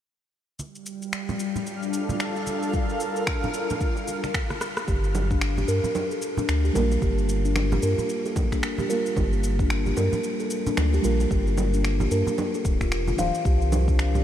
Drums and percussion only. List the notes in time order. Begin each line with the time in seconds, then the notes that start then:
0.59 high conga, shaker
0.75 shaker
0.86 shaker
1.02 shaker
1.13 finger snap, shaker
1.29 low conga, shaker
1.40 shaker
1.56 low conga, shaker
1.67 shaker
1.83 shaker
1.93 shaker
2.09 high conga, low conga, shaker
2.20 finger snap, shaker
2.36 high bongo, shaker
2.47 high conga, shaker
2.63 high bongo, shaker
2.74 kick, high conga, shaker
2.89 shaker
3.00 shaker
3.16 shaker
3.27 finger snap, kick, shaker
3.43 low conga, shaker
3.54 high bongo, shaker
3.70 low conga, shaker
3.81 kick, shaker
3.96 high bongo, shaker
4.08 high conga, shaker
4.24 finger snap, high bongo, high conga, shaker
4.34 finger snap, kick, shaker
4.50 cross-stick, high conga, shaker
4.61 cross-stick, high bongo, shaker
4.77 cross-stick, shaker
4.88 kick, high conga, shaker
5.04 shaker
5.15 low conga, shaker
5.31 kick, shaker
5.41 finger snap, shaker
5.58 low conga, shaker
5.68 high bongo, shaker
5.84 low conga, shaker
5.95 low conga, shaker
6.11 shaker
6.22 shaker
6.37 high conga, low conga, shaker
6.49 finger snap, shaker
6.65 high bongo, shaker
6.75 high conga, low conga, shaker
6.92 high bongo, shaker
7.02 kick, high conga, shaker
7.18 shaker
7.29 shaker
7.45 shaker
7.56 finger snap, low conga, shaker
7.72 low conga, shaker
7.83 shaker
7.98 low conga, shaker
8.09 shaker
8.26 high bongo, shaker
8.36 kick, high conga, low conga, shaker
8.52 finger snap, kick, high bongo, shaker
8.63 finger snap, shaker
8.78 high conga, low conga, shaker
8.90 high bongo, shaker
9.06 shaker
9.16 kick, high conga, low conga, shaker
9.33 shaker
9.44 shaker
9.59 kick, shaker
9.70 finger snap, shaker
9.86 low conga, shaker
9.97 high bongo, low conga, shaker
10.13 low conga, shaker
10.24 shaker
10.40 shaker
10.50 shaker
10.67 high conga, low conga, shaker
10.77 finger snap, low conga, shaker
10.93 high bongo, shaker
11.03 high conga, shaker
11.20 high bongo, shaker
11.31 kick, high conga, shaker
11.47 shaker
11.58 low conga, shaker
11.74 shaker
11.85 finger snap, shaker
12.00 low conga, shaker
12.11 shaker
12.27 low conga, shaker
12.38 low conga, shaker
12.54 high bongo, shaker
12.65 kick, high conga, shaker
12.81 finger snap, kick, high bongo, shaker
12.92 finger snap, shaker
13.07 high conga, low conga, shaker
13.18 high bongo, low conga, shaker
13.35 shaker
13.45 kick, high conga, shaker
13.62 shaker
13.72 low conga, shaker
13.88 kick, shaker
13.99 finger snap, shaker
14.15 low conga, shaker